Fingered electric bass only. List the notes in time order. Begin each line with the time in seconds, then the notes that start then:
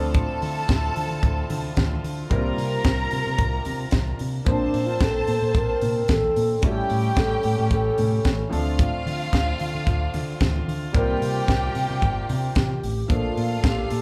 Already playing: D2
0.42 D3
0.70 D2
0.97 D3
1.10 D3
1.23 D2
1.50 D3
1.78 D2
2.04 D3
2.31 C2
2.58 C3
2.85 C2
3.13 C3
3.27 C3
3.39 C2
3.66 C3
3.93 C2
4.21 C3
4.47 A#1
4.74 A#2
5.01 A#1
5.28 A#2
5.42 A#2
5.55 A#1
5.82 A#2
6.10 A#1
6.37 A#2
6.63 A1
6.91 A2
7.17 A1
7.45 A2
7.59 A2
7.71 A1
7.99 A2
8.26 A1
8.53 D2
9.06 D3
9.33 D2
9.61 D3
9.75 D3
9.87 D2
10.14 D3
10.41 D2
10.68 D3
10.95 C2
11.22 C3
11.49 C2
11.76 C3
11.90 C3
12.03 G1
12.30 C3
12.57 C3
12.84 A1
13.10 A#1
13.37 A#2
13.64 A#1
13.92 A#2